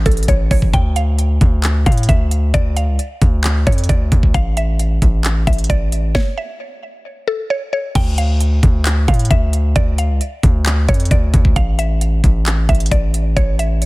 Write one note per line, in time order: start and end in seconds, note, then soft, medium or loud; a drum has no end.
0.06 0.27 A1 loud
0.06 0.26 A4 medium
0.06 kick medium
0.06 closed hi-hat medium
0.11 closed hi-hat medium
0.17 closed hi-hat medium
0.23 closed hi-hat medium
0.28 0.50 A1 loud
0.28 0.48 C#5 medium
0.28 kick loud
0.28 closed hi-hat medium
0.51 0.73 A1 loud
0.51 0.71 C#5 medium
0.51 kick loud
0.51 open hi-hat medium
0.62 kick loud
0.73 1.38 D2 loud
0.73 0.93 G5 loud
0.73 kick loud
0.73 closed hi-hat medium
0.96 1.60 F5 medium
0.96 closed hi-hat medium
1.19 closed hi-hat medium
1.41 1.84 D2 loud
1.41 kick medium
1.41 closed hi-hat medium
1.64 clap loud
1.64 closed hi-hat medium
1.86 2.08 A2 loud
1.86 2.06 F5 medium
1.86 kick medium
1.86 closed hi-hat soft
1.92 closed hi-hat medium
1.98 closed hi-hat medium
2.03 closed hi-hat medium
2.09 2.52 D2 loud
2.09 2.51 E5 medium
2.09 kick loud
2.09 closed hi-hat medium
2.31 closed hi-hat medium
2.54 2.89 D2 loud
2.54 2.74 D5 loud
2.54 kick loud
2.54 closed hi-hat medium
2.77 3.40 F5 medium
2.77 closed hi-hat medium
2.88 2.98 C#2 loud
2.99 closed hi-hat medium
3.22 3.65 D2 loud
3.22 kick medium
3.22 closed hi-hat medium
3.44 clap loud
3.44 closed hi-hat loud
3.67 3.88 F2 loud
3.67 3.87 C#5 medium
3.67 kick loud
3.67 closed hi-hat soft
3.72 closed hi-hat medium
3.78 closed hi-hat medium
3.84 closed hi-hat medium
3.89 4.11 D2 loud
3.89 4.32 D5 medium
3.89 kick loud
3.89 closed hi-hat medium
4.12 4.33 D2 loud
4.12 kick loud
4.12 closed hi-hat medium
4.23 kick loud
4.34 4.99 A1 loud
4.34 4.54 F5 loud
4.34 kick loud
4.34 closed hi-hat medium
4.57 5.21 E5 medium
4.57 closed hi-hat medium
4.79 closed hi-hat medium
5.02 5.45 A1 loud
5.02 kick medium
5.02 closed hi-hat medium
5.25 clap loud
5.25 closed hi-hat medium
5.47 5.69 A1 loud
5.47 5.67 E5 medium
5.47 kick loud
5.47 closed hi-hat soft
5.53 closed hi-hat medium
5.58 closed hi-hat medium
5.64 closed hi-hat medium
5.70 6.13 A1 loud
5.70 6.12 D5 loud
5.70 kick loud
5.70 closed hi-hat medium
5.92 closed hi-hat medium
6.15 6.35 C#5 loud
6.15 kick loud
6.15 snare medium
6.38 7.01 E5 medium
7.28 7.47 A4 medium
7.50 7.70 C#5 medium
7.73 7.93 C#5 medium
7.95 8.60 D2 loud
7.95 8.15 G5 loud
7.95 kick loud
7.95 closed hi-hat medium
7.95 crash loud
8.18 8.82 F5 medium
8.18 closed hi-hat medium
8.40 closed hi-hat medium
8.63 9.06 D2 loud
8.63 kick medium
8.63 closed hi-hat medium
8.86 clap loud
8.86 closed hi-hat loud
9.08 9.30 A2 loud
9.08 9.28 F5 medium
9.08 kick loud
9.08 closed hi-hat soft
9.14 closed hi-hat medium
9.19 closed hi-hat medium
9.25 closed hi-hat medium
9.31 9.74 D2 loud
9.31 9.73 E5 medium
9.31 kick loud
9.31 closed hi-hat medium
9.53 closed hi-hat medium
9.76 10.11 D2 loud
9.76 9.95 D5 loud
9.76 kick loud
9.76 closed hi-hat medium
9.98 10.62 F5 medium
9.98 closed hi-hat medium
10.10 10.20 C#2 loud
10.21 closed hi-hat medium
10.43 10.87 D2 loud
10.43 kick medium
10.43 closed hi-hat medium
10.66 clap loud
10.66 closed hi-hat loud
10.89 11.10 F2 loud
10.89 11.08 C#5 medium
10.89 kick loud
10.89 closed hi-hat soft
10.94 closed hi-hat medium
11.00 closed hi-hat medium
11.05 closed hi-hat medium
11.11 11.33 D2 loud
11.11 11.54 D5 medium
11.11 kick loud
11.11 closed hi-hat medium
11.34 11.55 D2 loud
11.34 kick loud
11.34 closed hi-hat medium
11.45 kick loud
11.56 12.21 A1 loud
11.56 11.76 F5 loud
11.56 kick loud
11.56 closed hi-hat medium
11.79 12.42 E5 medium
11.79 closed hi-hat medium
12.01 closed hi-hat medium
12.24 12.67 A1 loud
12.24 kick medium
12.24 closed hi-hat medium
12.46 clap loud
12.46 closed hi-hat loud
12.69 12.91 A1 loud
12.69 12.89 E5 medium
12.69 kick loud
12.69 closed hi-hat soft
12.75 closed hi-hat medium
12.80 closed hi-hat medium
12.86 closed hi-hat medium
12.91 13.35 A1 loud
12.91 13.34 D5 loud
12.91 kick loud
12.91 closed hi-hat medium
13.14 closed hi-hat medium
13.37 13.86 A1 loud
13.37 13.56 C#5 loud
13.37 kick loud
13.37 closed hi-hat medium
13.59 13.86 E5 medium
13.59 closed hi-hat medium
13.82 closed hi-hat medium